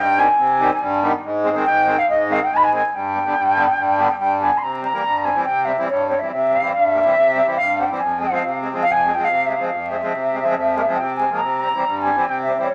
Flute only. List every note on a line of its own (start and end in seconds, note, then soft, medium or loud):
0.00 0.20 G5 loud
0.18 1.02 G#5 medium
1.64 2.00 G5 loud
1.98 2.08 F5 loud
2.09 2.33 D#5 medium
2.31 2.42 F5 medium
2.41 2.55 G5 loud
2.53 2.57 G#5 loud
2.53 2.64 B5 medium
2.63 2.72 G#5 loud
2.73 2.85 G#5 medium
2.85 2.95 G#5 medium
2.94 4.18 G5 medium
4.19 4.38 G5 loud
4.41 4.58 G#5 medium
4.57 4.64 C6 medium
4.62 4.82 A#5 medium
4.82 5.25 A#5 medium
5.24 5.43 G#5 medium
5.43 5.66 G5 loud
5.65 5.87 E5 medium
5.88 6.07 C#5 medium
6.08 6.20 C#5 medium
6.19 6.29 E5 medium
6.29 6.52 E5 medium
6.50 6.71 F5 medium
6.72 7.53 E5 loud
7.56 7.78 F5 loud
7.76 7.99 G5 medium
7.98 8.20 G#5 medium
8.18 8.57 F5 medium
8.81 8.92 F5 loud
8.91 9.15 G#5 loud
9.13 9.25 G5 medium
9.24 9.47 F5 medium
9.46 9.56 E5 medium
9.55 9.65 F5 medium
9.66 9.89 F5 medium
9.87 10.97 E5 medium
10.95 11.14 G5 loud
11.15 11.38 G#5 medium
11.36 11.57 A#5 medium
11.58 11.99 A#5 medium
12.00 12.23 G#5 medium
12.22 12.41 G5 loud
12.41 12.65 E5 medium
12.63 12.74 C#5 medium